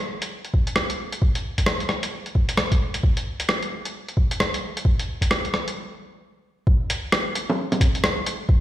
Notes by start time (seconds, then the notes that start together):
0.22 closed hi-hat
0.45 closed hi-hat
0.54 kick
0.67 closed hi-hat
0.76 cross-stick
0.90 closed hi-hat
1.12 closed hi-hat
1.22 kick
1.35 closed hi-hat
1.58 kick, closed hi-hat
1.66 cross-stick
1.80 closed hi-hat
1.89 cross-stick
2.03 closed hi-hat
2.26 closed hi-hat
2.35 kick
2.49 closed hi-hat
2.57 cross-stick
2.72 kick, closed hi-hat
2.94 closed hi-hat
3.03 kick
3.17 closed hi-hat
3.40 closed hi-hat
3.49 cross-stick
3.63 closed hi-hat
3.85 closed hi-hat
4.08 closed hi-hat
4.17 kick
4.31 closed hi-hat
4.40 cross-stick
4.54 closed hi-hat
4.77 closed hi-hat
4.85 kick
4.99 closed hi-hat
5.21 kick, closed hi-hat
5.31 cross-stick
5.45 closed hi-hat
5.54 cross-stick
5.68 closed hi-hat
6.67 kick
6.90 closed hi-hat
7.12 cross-stick
7.35 closed hi-hat
7.50 low bongo
7.72 closed hi-hat, low bongo
7.81 kick, closed hi-hat
7.95 closed hi-hat
8.04 cross-stick
8.26 closed hi-hat
8.49 kick